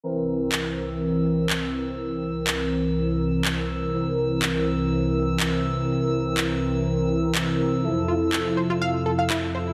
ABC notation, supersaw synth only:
X:1
M:4/4
L:1/8
Q:1/4=123
K:Cmix
V:1 name="Supersaw synth"
[E,CB]8- | [E,CB]8 | [E,CB]8- | [E,CB]8 |
[F,EA]8 |]